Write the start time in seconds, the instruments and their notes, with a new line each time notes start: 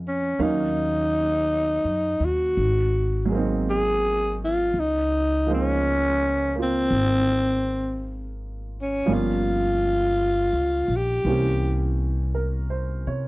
Already playing: upright bass F2, upright piano C#3 D#3 G#3 A#3 D#4 F4 C5
0.08 alto saxophone C#4
0.39 upright bass D#2, upright piano D#3 F#3 A#3 C#4 F5, alto saxophone D#4
1.85 upright bass F#2
2.20 upright bass D#2
2.25 alto saxophone F#4
2.57 upright bass G#1
3.25 upright piano F#3 G#3
3.32 upright piano A#3 C4
3.37 upright piano D#4
3.70 alto saxophone G#4
4.44 alto saxophone F4
4.74 upright bass C#2
4.80 alto saxophone D#4
5.46 upright piano F3 G#3 A#3 C5
5.51 alto saxophone C#4, upright piano D#4
6.56 upright piano A#3 F4
6.63 alto saxophone C4
6.91 upright bass G#1
8.82 alto saxophone C#4
9.06 upright bass G1, upright piano F3 G3 A#3 C#4
9.11 upright piano F4, alto saxophone F4
10.53 upright bass C#2
10.88 upright bass A#1
10.97 alto saxophone G4
11.25 upright bass C2, upright piano E3 A#3 C4 C#4 G4
12.35 upright piano A#4
12.70 upright piano C5
13.07 upright bass C3, upright piano C#5